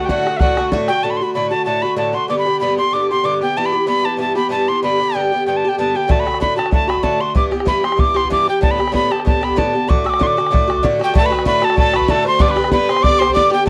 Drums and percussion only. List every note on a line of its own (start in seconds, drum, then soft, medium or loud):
0.09 bodhran medium
0.27 bodhran soft
0.40 bodhran medium
0.57 bodhran medium
0.72 bodhran medium
0.88 bodhran medium
6.10 bodhran medium
6.27 bodhran medium
6.34 bodhran medium
6.42 bodhran medium
6.59 bodhran medium
6.66 bodhran medium
6.72 bodhran medium
6.90 bodhran medium
6.97 bodhran soft
7.04 bodhran medium
7.35 bodhran medium
7.52 bodhran soft
7.60 bodhran medium
7.67 bodhran medium
7.84 bodhran medium
7.92 bodhran medium
7.99 bodhran medium
8.16 bodhran medium
8.25 bodhran soft
8.32 bodhran medium
8.63 bodhran medium
8.80 bodhran medium
8.87 bodhran medium
8.94 bodhran medium
9.12 bodhran medium
9.20 bodhran soft
9.27 bodhran medium
9.43 bodhran medium
9.50 bodhran soft
9.58 bodhran medium
9.90 bodhran medium
10.06 bodhran medium
10.14 bodhran medium
10.21 bodhran medium
10.38 bodhran soft
10.46 bodhran soft
10.54 bodhran medium
10.70 bodhran medium
10.78 bodhran soft
10.84 bodhran medium
11.01 bodhran medium
11.15 bodhran medium
11.32 bodhran medium
11.39 bodhran medium
11.46 bodhran medium
11.62 bodhran medium
11.70 bodhran medium
11.78 bodhran medium
11.93 bodhran medium
12.01 bodhran soft
12.08 bodhran medium
12.40 bodhran medium
12.57 bodhran medium
12.64 bodhran medium
12.72 bodhran medium
12.89 bodhran medium
12.97 bodhran medium
13.04 bodhran medium
13.22 bodhran medium
13.30 bodhran soft
13.37 bodhran medium